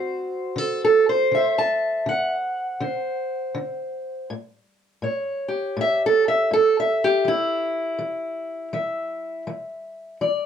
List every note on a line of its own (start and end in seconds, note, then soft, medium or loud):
0.00 0.51 D3 medium
0.00 4.30 C4 soft
0.00 1.28 F#4 soft
0.00 0.58 C5 soft
0.56 1.25 D3 medium
0.56 0.83 A4 medium
0.85 1.08 A4 medium
1.09 1.58 C5 medium
1.31 2.00 D3 medium
1.31 2.32 E5 medium
1.58 2.07 A5 medium
2.06 2.74 D3 medium
2.06 4.30 F#5 medium
2.80 3.49 D3 medium
2.80 4.25 C5 soft
3.55 4.23 D3 medium
4.30 4.98 A2 medium
5.02 5.71 A2 medium
5.02 7.23 C#5 soft
5.48 7.01 G4 soft
5.77 6.45 A2 medium
5.81 6.04 E5 medium
6.06 6.28 A4 medium
6.28 6.52 E5 medium
6.51 7.20 A2 medium
6.51 6.77 A4 medium
6.80 7.28 E5 medium
7.04 7.27 G4 medium
7.25 7.94 E3 medium
7.25 9.50 E4 medium
7.99 8.68 E3 medium
8.73 9.42 E3 medium
8.73 10.19 E5 soft
9.47 10.16 E3 medium
10.21 10.46 E3 medium
10.21 10.46 D5 soft